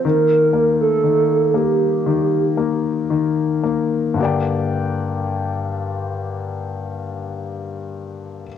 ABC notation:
X:1
M:4/4
L:1/16
Q:1/4=54
K:Gm
V:1 name="Soft synth lead"
B3 A3 G6 z4 | z16 |]
V:2 name="Grand piano"
E,2 B,2 E,2 B,2 E,2 B,2 E,2 B,2 | [G,,D,B,Gdg]16 |]